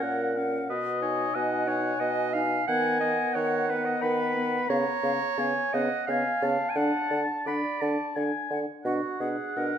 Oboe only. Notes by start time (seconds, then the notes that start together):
0.02 F#5
0.37 F5
0.70 D#5
1.35 F#5
2.68 G#5
3.33 F#5
4.02 B5
4.69 A#5
5.39 G#5
5.74 F#5
6.10 G#5
6.43 A5
7.47 B5
7.81 A5
8.16 G#5
8.85 F#5